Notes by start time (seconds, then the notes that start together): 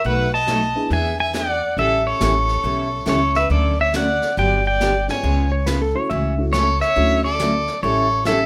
0.04 B1 B2 F#3 A3 D#4 F#4 B4 F#5, brush sweep
0.34 D#5 A5
0.47 B2 F#3 A3 D#4 F#4, snare, hi-hat pedal
0.75 B3 D4 E4 G#4
0.90 E2 E3 B3 D4 G#4 E5 G#5, brush sweep
1.20 E5 G#5
1.33 E3 B3 D4 G#4 D5 F#5, snare, hi-hat pedal
1.76 A1 E3 G3 A3 C#4 E4 G4 A4 E5, brush sweep
2.07 A4 C#5
2.20 A1 E3 G3 A3 C#4 E4 G4 A4, snare, hi-hat pedal
2.49 snare
2.63 B1 E3 G3 C#4 E4 A4, brush sweep
3.06 C#2 E3 G3 A3 C#4 E4 A4 C#5, snare, hi-hat pedal
3.35 B4 E5, snare
3.50 D2 D3 F#3 A3 C#4 F#4 A4 D5, brush sweep
3.81 C#5 E5
3.93 D3 F#3 A3 C#4 F#4 D5 F#5, snare, hi-hat pedal
4.22 snare
4.37 G1 D3 F#3 B3 D4 G4 D5 G5, brush sweep
4.67 D5 G5
4.81 D3 F#3 B3 D4 G4, snare, hi-hat pedal
5.08 G#3 B3 C#4 F4 C#5 G#5, snare
5.23 C#2 C#3 G#3 B3 F4 G#4, brush sweep
5.52 C#5
5.66 C#3 G#3 B3 F4 G#4 B4, snare, hi-hat pedal
5.82 A4
5.94 A3 C#4 E4 F#4 C#5
6.10 C#2 C#3 E3 A3 C#4 F#4 E5, brush sweep
6.37 A3 C#4 E4 F#4
6.53 C#3 E3 A3 C#4 F#4 A4 C#5, snare, hi-hat pedal
6.81 C#5 E5, snare
6.96 D2 D3 F#3 A3 C#4 D4 E4 F#4, brush sweep
7.24 A4 D5
7.39 D3 F#3 A3 C#4 F#4, snare, hi-hat pedal
7.67 snare
7.82 A1 E3 G3 C#4 E4 A4 C#5, brush sweep
8.25 E3 G3 A3 C#4 E4 A4 E5, snare, hi-hat pedal